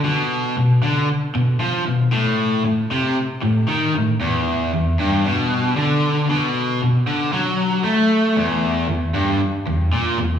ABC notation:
X:1
M:4/4
L:1/8
Q:1/4=115
K:Bdor
V:1 name="Overdriven electric guitar" clef=bass
B,,2 B,, D, z B,, =F, B,, | A,,2 A,, =C, z A,, _E, A,, | E,,2 E,, =G,, B,,2 D,2 | B,,2 B,, D, F,2 A,2 |
E,,2 E,, =G,, z E,, _B,, E,, |]